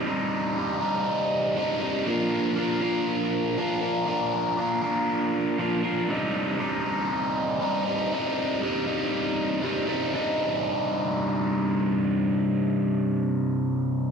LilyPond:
\new Staff \with { instrumentName = "Overdriven electric guitar" } { \clef bass \time 4/4 \key c \minor \tempo 4 = 119 <c, g, c g ees'>4 <g, c g ees'>8 <c g ees'>4. <c, g, c g ees'>8 <c g ees'>8 | <bes, f bes d' f' bes'>4 <bes d' f' bes'>8 <bes d' f' bes'>4. <bes, f bes d' f' bes'>8 <bes d' f' bes'>8 | <bes, f bes d' f' bes'>4 <bes d' f' bes'>8 <bes d' f' bes'>4. <bes, f bes d' f' bes'>8 <bes d' f' bes'>8 | <c, g, c g ees'>4 <g, c g ees'>8 <c g ees'>4. <c, g, c g ees'>8 <c g ees'>8 |
<c, g, c g ees'>4 <g, c g ees'>8 <c g ees'>4. <c, g, c g ees'>8 <c g ees'>8 | <c, g, c g ees'>1~ | <c, g, c g ees'>1 | }